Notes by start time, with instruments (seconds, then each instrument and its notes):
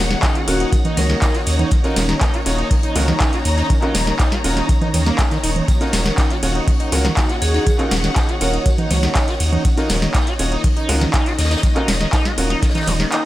Already playing: analog synth pad D#3 A#3 C#4 F#4, string section D#4 C#5 F#5
0.00 sub bass D#1
0.11 acid bass D#3, snare
0.23 acid bass D#4, kick, snare, clap, closed hi-hat, ride, tambourine
0.35 acid bass F#4, closed hi-hat
0.48 sub bass D#1, grand piano C#4 F4 F#4 A#4, vibraphone F#4, open hi-hat, ride, tambourine
0.60 acid bass D#4, closed hi-hat
0.73 acid bass D#3, kick, closed hi-hat, ride, tambourine
0.85 acid bass D#4, closed hi-hat, low conga
0.97 sub bass C#2, acid bass D#3, vibraphone A#4, open hi-hat, ride, tambourine, low conga
1.10 acid bass D#3, snare, closed hi-hat
1.22 acid bass D#4, kick, snare, clap, closed hi-hat, ride, tambourine
1.34 acid bass F#4, snare, closed hi-hat
1.46 sub bass D#2, open hi-hat, ride, tambourine
1.59 acid bass D#4, closed hi-hat, low conga
1.71 acid bass D#3, analog synth pad D#4, kick, closed hi-hat, ride, tambourine
1.83 grand piano C#4 F4 F#4 A#4, acid bass D#4, snare, closed hi-hat
1.96 sub bass D#1, acid bass D#3, snare, open hi-hat, ride, tambourine
2.08 acid bass D#3, string section A#5, snare, closed hi-hat
2.21 acid bass D#4, kick, snare, clap, closed hi-hat, ride, tambourine
2.33 acid bass F#4, snare, closed hi-hat
2.46 sub bass D#1, grand piano C#4 F4 F#4 C#5, open hi-hat, ride, tambourine
2.58 acid bass D#4, closed hi-hat
2.71 acid bass D#3, kick, closed hi-hat, open hi-hat, ride
2.83 acid bass D#4, closed hi-hat
2.96 sub bass C#2, acid bass D#3, grand piano C#4 F4 F#4 A#4, open hi-hat, ride, tambourine
3.08 acid bass D#3, snare, closed hi-hat, low conga
3.20 acid bass D#4, kick, snare, clap, closed hi-hat, ride, tambourine
3.33 acid bass F#4, snare, closed hi-hat
3.45 sub bass D#2, open hi-hat, ride, tambourine
3.57 acid bass D#4, snare, closed hi-hat
3.70 acid bass D#3, kick, closed hi-hat, ride, tambourine
3.82 grand piano C#4 F4 F#4 A#4, acid bass D#4, clap, closed hi-hat
3.95 sub bass D#1, acid bass D#3, snare, open hi-hat, ride, tambourine
4.07 acid bass D#3, snare, closed hi-hat
4.19 acid bass D#4, kick, snare, clap, closed hi-hat, ride, tambourine
4.32 acid bass F#4, snare, closed hi-hat
4.44 sub bass D#1, grand piano C#4 F4 F#4 A#4, open hi-hat, ride, tambourine
4.57 acid bass D#4, snare, closed hi-hat
4.69 acid bass D#3, kick, closed hi-hat, ride, tambourine
4.82 acid bass D#4, closed hi-hat, low conga
4.94 sub bass D#2, acid bass D#3, open hi-hat, ride, tambourine, low conga
5.06 acid bass A#3, snare, closed hi-hat
5.18 acid bass G#3, kick, snare, clap, closed hi-hat, ride, tambourine
5.31 acid bass D#3, snare, closed hi-hat
5.43 sub bass D#1, acid bass D#4, open hi-hat, ride, tambourine
5.56 closed hi-hat, low conga
5.68 acid bass D#3, analog synth pad F#4, kick, closed hi-hat, ride, tambourine
5.81 grand piano C#4 F4 F#4 A#4, acid bass D#4, snare, closed hi-hat
5.93 sub bass D#1, acid bass D#3, snare, open hi-hat, ride, tambourine
6.04 acid bass D#3, string section F#5, snare, closed hi-hat
6.18 acid bass D#4, kick, snare, clap, closed hi-hat, ride, tambourine
6.30 acid bass F#4, snare, closed hi-hat
6.43 sub bass D#1, grand piano C#4 F4 F#4 C#5, open hi-hat, ride, tambourine
6.55 acid bass D#4, closed hi-hat
6.68 acid bass D#3, kick, closed hi-hat, open hi-hat, ride
6.80 acid bass D#4, closed hi-hat
6.92 sub bass C#2, acid bass D#3, grand piano C#4 F4 F#4 A#4, open hi-hat, ride, tambourine
7.05 acid bass D#3, snare, low conga
7.17 acid bass D#4, kick, snare, clap, closed hi-hat, ride, tambourine
7.29 acid bass F#4, snare, closed hi-hat
7.42 sub bass D#2, vibraphone G#4, open hi-hat, ride, tambourine
7.54 acid bass D#4, vibraphone G#4, snare, closed hi-hat
7.67 acid bass D#3, kick, closed hi-hat, ride, tambourine
7.79 grand piano C#4 F4 F#4 A#4, acid bass D#4, clap, closed hi-hat
7.91 sub bass D#1, acid bass D#3, snare, open hi-hat, ride, tambourine
8.04 acid bass D#3, snare, closed hi-hat
8.16 acid bass D#4, kick, snare, clap, closed hi-hat, ride, tambourine
8.29 acid bass F#4, closed hi-hat
8.41 sub bass D#1, grand piano C#4 F4 F#4 A#4, vibraphone C#5, open hi-hat, ride, tambourine
8.53 acid bass D#4, vibraphone C#5, closed hi-hat
8.66 acid bass D#3, kick, closed hi-hat, ride, tambourine
8.78 acid bass D#4, closed hi-hat, low conga
8.90 sub bass C#2, acid bass D#3, vibraphone C#5, open hi-hat, ride, tambourine, low conga
9.03 acid bass D#3, snare, closed hi-hat
9.15 acid bass D#4, kick, snare, clap, closed hi-hat, ride, tambourine
9.28 acid bass F#4, snare, closed hi-hat
9.40 sub bass D#2, open hi-hat, ride, tambourine
9.53 acid bass D#4, closed hi-hat, low conga
9.65 acid bass D#3, analog synth pad D#4, kick, closed hi-hat, ride, tambourine
9.77 grand piano C#4 F4 F#4 A#4, acid bass D#4, snare, closed hi-hat
9.89 sub bass D#1, acid bass D#3, snare, open hi-hat, ride, tambourine
10.01 acid bass D#3, string section D#5, snare, closed hi-hat
10.14 acid bass D#4, kick, snare, clap, closed hi-hat, ride, tambourine
10.27 acid bass F#4, snare, closed hi-hat
10.39 sub bass D#1, grand piano C#4 F4 F#4 C#5, open hi-hat, ride, tambourine
10.52 acid bass D#4, closed hi-hat
10.63 acid bass D#3, kick, closed hi-hat, open hi-hat, ride
10.77 acid bass D#4, closed hi-hat
10.89 sub bass C#2, acid bass D#3, grand piano C#4 F4 F#4 A#4, open hi-hat, ride, tambourine
11.01 acid bass D#3, snare, closed hi-hat, low conga
11.13 acid bass D#4, kick, snare, clap, closed hi-hat, ride, tambourine
11.26 acid bass F#4, snare, closed hi-hat
11.38 sub bass D#2, snare, open hi-hat, ride, tambourine
11.45 snare, tambourine
11.51 acid bass D#4, snare, closed hi-hat, tambourine
11.57 snare, tambourine
11.63 acid bass D#3, kick, closed hi-hat, ride, tambourine
11.76 grand piano C#4 F4 F#4 A#4, acid bass D#4, clap, closed hi-hat
11.88 sub bass D#1, acid bass D#3, snare, open hi-hat, ride, tambourine
12.01 acid bass D#3, snare, closed hi-hat
12.13 acid bass D#4, kick, snare, clap, closed hi-hat, ride, tambourine
12.25 acid bass F#4, snare, closed hi-hat
12.38 sub bass D#1, grand piano C#4 F4 F#4 A#4, open hi-hat, ride, tambourine
12.50 acid bass D#4, snare, closed hi-hat
12.62 acid bass D#3, kick, snare, closed hi-hat, ride, tambourine
12.69 snare, tambourine
12.74 acid bass D#4, snare, closed hi-hat, tambourine, low conga
12.81 snare, tambourine
12.86 sub bass D#1, acid bass D#3, snare, open hi-hat, ride, tambourine, low conga
12.99 acid bass D#3, snare, closed hi-hat
13.12 acid bass D#4, clap, closed hi-hat, ride, tambourine